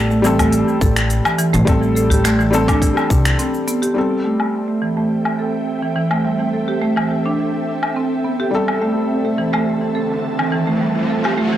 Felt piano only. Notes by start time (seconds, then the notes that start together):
Already playing: G3 A4
0.22 G3 C4 A4
1.65 G3 C4
1.69 A4
2.51 G3 C4 A4
3.94 G3 C4 A4
8.51 G3 A4